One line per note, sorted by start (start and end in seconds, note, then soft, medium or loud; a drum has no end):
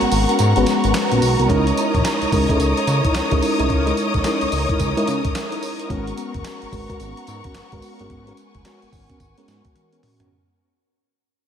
0.00 0.05 G#1 medium
0.00 0.56 G#3 loud
0.00 0.57 B3 medium
0.00 1.46 B3 medium
0.00 0.57 C#4 medium
0.00 0.57 F#4 medium
0.00 1.51 A#4 loud
0.00 1.46 F#5 medium
0.00 5.86 A#5 medium
0.00 1.46 C#6 medium
0.00 closed hi-hat medium
0.12 0.26 G#1 medium
0.12 open hi-hat medium
0.12 tambourine medium
0.29 0.38 B3 medium
0.29 0.38 C#4 medium
0.29 0.38 F#4 medium
0.29 0.38 A#4 medium
0.29 closed hi-hat medium
0.39 0.53 G#2 loud
0.39 closed hi-hat medium
0.39 tambourine medium
0.56 0.65 G#1 medium
0.56 1.37 G#3 loud
0.56 0.66 B3 medium
0.56 1.37 B3 medium
0.56 0.66 C#4 medium
0.56 1.38 C#4 medium
0.56 0.66 F#4 medium
0.56 1.38 F#4 medium
0.56 0.66 A#4 medium
0.56 1.38 B4 loud
0.56 closed hi-hat medium
0.66 snare medium
0.66 closed hi-hat medium
0.66 tambourine medium
0.84 0.93 G#1 medium
0.84 closed hi-hat medium
0.94 snare loud
0.94 clap medium
0.94 closed hi-hat medium
0.94 tambourine loud
1.11 1.20 A#1 loud
1.11 1.21 B3 medium
1.11 1.21 C#4 medium
1.11 1.21 F#4 medium
1.11 1.21 A#4 medium
1.11 closed hi-hat medium
1.22 1.36 B1 loud
1.22 open hi-hat medium
1.22 tambourine medium
1.39 1.47 C2 medium
1.39 1.48 B3 medium
1.39 1.48 C#4 medium
1.39 1.49 F#4 medium
1.39 1.49 A#4 medium
1.39 closed hi-hat medium
1.49 1.72 C#2 loud
1.49 2.22 G#3 medium
1.49 2.22 C#4 medium
1.49 1.65 D#4 medium
1.49 2.23 D#4 medium
1.49 1.65 E4 medium
1.49 2.23 E4 medium
1.49 1.65 A#4 loud
1.49 2.23 A#4 loud
1.49 5.86 C#5 medium
1.49 5.86 D#5 medium
1.49 5.86 D#6 medium
1.49 kick loud
1.49 closed hi-hat medium
1.67 closed hi-hat medium
1.77 1.93 D#4 medium
1.77 1.93 E4 medium
1.77 1.93 A#4 medium
1.77 closed hi-hat medium
1.77 tambourine medium
1.94 2.03 A#1 loud
1.94 kick medium
1.94 closed hi-hat medium
2.05 snare loud
2.05 clap medium
2.05 closed hi-hat medium
2.05 tambourine loud
2.22 2.26 C#2 soft
2.22 closed hi-hat soft
2.32 2.46 C#2 medium
2.32 2.46 G#3 medium
2.32 2.47 C#4 medium
2.32 2.47 D#4 medium
2.32 2.47 E4 medium
2.32 2.47 A#4 loud
2.32 kick loud
2.32 open hi-hat medium
2.32 tambourine medium
2.49 3.15 G#3 medium
2.49 3.16 C#4 medium
2.49 3.16 D#4 medium
2.49 2.59 D#4 medium
2.49 3.16 E4 medium
2.49 2.59 E4 medium
2.49 2.55 A4 medium
2.49 2.59 A#4 medium
2.49 kick medium
2.49 closed hi-hat medium
2.56 2.73 C#2 loud
2.56 3.19 A#4 loud
2.56 closed hi-hat medium
2.56 tambourine medium
2.77 closed hi-hat medium
2.87 3.01 C#3 loud
2.87 closed hi-hat medium
2.87 tambourine medium
3.05 3.14 D#4 medium
3.05 3.14 E4 medium
3.05 3.14 A#4 medium
3.05 kick loud
3.05 closed hi-hat medium
3.14 3.22 C#2 soft
3.14 snare loud
3.14 clap medium
3.14 closed hi-hat medium
3.14 tambourine loud
3.31 3.40 C#2 medium
3.31 3.54 G#3 loud
3.31 3.54 C#4 medium
3.31 3.54 D#4 medium
3.31 3.54 E4 medium
3.31 3.54 A#4 loud
3.31 kick loud
3.31 closed hi-hat medium
3.42 3.58 D#4 medium
3.42 3.58 E4 medium
3.42 3.58 A#4 medium
3.42 open hi-hat medium
3.42 tambourine medium
3.58 3.68 C2 medium
3.58 3.81 G#3 medium
3.58 3.81 C#4 medium
3.58 3.81 D#4 medium
3.58 3.81 E4 medium
3.58 3.82 A#4 loud
3.58 closed hi-hat medium
3.70 3.92 C#2 loud
3.70 3.96 D#4 loud
3.70 3.96 E4 medium
3.70 3.96 A#4 loud
3.70 kick loud
3.70 closed hi-hat medium
3.86 4.19 G#3 medium
3.86 4.19 C#4 medium
3.86 4.20 D#4 medium
3.86 4.20 E4 medium
3.86 4.20 A#4 loud
3.86 closed hi-hat medium
3.97 closed hi-hat medium
3.97 tambourine medium
4.14 4.23 A#1 medium
4.14 kick medium
4.14 closed hi-hat medium
4.24 4.83 G#3 medium
4.24 4.83 C#4 medium
4.24 4.40 D#4 medium
4.24 4.84 D#4 medium
4.24 4.40 E4 medium
4.24 4.84 E4 medium
4.24 4.40 A#4 medium
4.24 4.84 A#4 medium
4.24 snare loud
4.24 clap medium
4.24 closed hi-hat medium
4.24 tambourine loud
4.41 4.46 C#2 soft
4.41 closed hi-hat medium
4.52 4.66 C#2 medium
4.52 open hi-hat medium
4.52 tambourine medium
4.69 4.79 D#4 medium
4.69 4.79 E4 medium
4.69 4.79 A#4 medium
4.69 kick loud
4.69 closed hi-hat medium
4.80 4.94 C#2 loud
4.80 kick medium
4.80 closed hi-hat medium
4.80 tambourine medium
4.96 5.78 G#3 loud
4.96 5.78 C#4 medium
4.96 5.06 D#4 medium
4.96 5.78 D#4 medium
4.96 5.06 E4 medium
4.96 5.78 E4 medium
4.96 5.06 A#4 medium
4.96 5.78 A#4 loud
4.96 closed hi-hat medium
5.08 5.21 C#3 loud
5.08 closed hi-hat medium
5.08 tambourine medium
5.25 kick loud
5.25 closed hi-hat medium
5.35 snare loud
5.35 clap medium
5.35 closed hi-hat medium
5.35 tambourine loud
5.51 5.61 D#4 medium
5.51 5.61 E4 medium
5.51 5.61 A#4 medium
5.51 closed hi-hat soft
5.62 open hi-hat medium
5.62 tambourine medium
5.79 5.89 D#4 medium
5.79 5.89 E4 medium
5.79 5.89 A#4 medium
5.79 closed hi-hat medium
5.89 6.12 G#1 loud
5.89 6.62 G#3 loud
5.89 10.26 B3 medium
5.89 6.62 B3 medium
5.89 6.05 B3 loud
5.89 6.63 C#4 medium
5.89 6.05 C#4 medium
5.89 6.63 F#4 medium
5.89 6.05 F#4 medium
5.89 6.06 A#4 loud
5.89 6.63 A#4 loud
5.89 10.26 F#5 medium
5.89 8.07 A#5 medium
5.89 10.26 C#6 medium
5.89 kick loud
5.89 closed hi-hat medium
6.07 closed hi-hat medium
6.18 6.33 B3 medium
6.18 6.33 C#4 medium
6.18 6.33 F#4 medium
6.18 6.33 A#4 medium
6.18 closed hi-hat medium
6.18 tambourine medium
6.34 6.43 F#1 medium
6.34 kick medium
6.34 closed hi-hat medium
6.45 snare loud
6.45 clap medium
6.45 closed hi-hat medium
6.45 tambourine loud
6.62 6.66 G#1 medium
6.62 closed hi-hat soft
6.72 6.86 G#1 medium
6.72 6.87 G#3 medium
6.72 6.87 B3 medium
6.72 6.87 C#4 medium
6.72 6.87 F#4 medium
6.72 6.87 A#4 loud
6.72 kick medium
6.72 open hi-hat medium
6.72 tambourine medium
6.89 7.56 G#3 medium
6.89 7.56 B3 medium
6.89 6.99 B3 medium
6.89 7.56 C#4 medium
6.89 6.99 C#4 medium
6.89 7.56 F#4 medium
6.89 6.99 F#4 medium
6.89 7.56 A#4 loud
6.89 6.99 A#4 medium
6.89 kick loud
6.89 closed hi-hat medium
7.00 7.14 G#1 loud
7.00 closed hi-hat medium
7.00 tambourine medium
7.17 closed hi-hat medium
7.27 7.41 G#2 loud
7.27 closed hi-hat medium
7.27 tambourine medium
7.44 7.54 B3 medium
7.44 7.54 C#4 medium
7.44 7.54 F#4 medium
7.44 7.54 A#4 medium
7.44 kick loud
7.44 closed hi-hat medium
7.54 7.62 G#1 soft
7.54 snare loud
7.54 clap medium
7.54 closed hi-hat medium
7.54 tambourine loud
7.72 7.81 G#1 medium
7.72 7.94 G#3 medium
7.72 7.94 B3 medium
7.72 7.94 C#4 medium
7.72 7.95 F#4 medium
7.72 7.95 A#4 loud
7.72 kick medium
7.72 closed hi-hat medium
7.82 7.98 B3 medium
7.82 7.98 C#4 medium
7.82 7.98 F#4 medium
7.82 7.98 A#4 loud
7.82 open hi-hat medium
7.82 tambourine medium
7.99 8.08 G1 medium
7.99 8.22 G#3 loud
7.99 8.22 B3 medium
7.99 8.22 C#4 medium
7.99 8.22 F#4 loud
7.99 8.22 A#4 loud
7.99 closed hi-hat medium
8.10 8.32 G#1 loud
8.10 8.36 B3 loud
8.10 8.36 C#4 medium
8.10 8.36 F#4 loud
8.10 8.36 A#4 loud
8.10 10.28 G#5 medium
8.10 kick loud
8.10 closed hi-hat medium
8.27 8.60 G#3 loud
8.27 8.60 B3 medium
8.27 8.60 C#4 medium
8.27 8.61 F#4 medium
8.27 8.61 A#4 loud
8.27 closed hi-hat medium
8.37 closed hi-hat medium
8.37 tambourine medium
8.55 8.63 F#1 loud
8.55 kick medium
8.55 closed hi-hat medium
8.65 9.24 G#3 medium
8.65 8.80 B3 medium
8.65 9.24 B3 medium
8.65 8.80 C#4 medium
8.65 9.24 C#4 medium
8.65 8.81 F#4 medium
8.65 9.24 F#4 medium
8.65 8.81 A#4 medium
8.65 9.24 A#4 medium
8.65 snare loud
8.65 clap medium
8.65 closed hi-hat medium
8.65 tambourine loud
8.82 8.86 G#1 medium
8.82 closed hi-hat soft
8.92 9.06 G#1 loud
8.92 kick medium
8.92 open hi-hat medium
8.92 tambourine medium
9.09 9.19 B3 medium
9.09 9.19 C#4 medium
9.09 9.19 F#4 medium
9.09 9.19 A#4 medium
9.09 kick loud
9.09 closed hi-hat medium
9.20 9.34 G#1 loud
9.20 kick loud
9.20 closed hi-hat medium
9.20 tambourine medium
9.37 10.18 G#3 medium
9.37 9.46 B3 medium
9.37 10.18 B3 medium
9.37 9.47 C#4 medium
9.37 10.18 C#4 medium
9.37 9.47 F#4 medium
9.37 10.19 F#4 medium
9.37 9.47 A#4 medium
9.37 10.19 A#4 loud
9.37 closed hi-hat medium
9.48 9.62 G#2 loud
9.48 snare medium
9.48 closed hi-hat medium
9.48 tambourine medium
9.65 kick loud
9.65 closed hi-hat medium
9.76 closed hi-hat medium
9.76 high tom medium
9.92 10.02 B3 medium
9.92 10.02 C#4 medium
9.92 10.02 F#4 medium
9.92 10.02 A#4 medium
9.92 closed hi-hat medium
10.03 mid tom loud
10.03 open hi-hat medium
10.19 10.29 B3 medium
10.19 10.29 C#4 medium
10.19 10.29 F#4 medium
10.19 10.29 A#4 medium
10.19 closed hi-hat medium
10.19 floor tom loud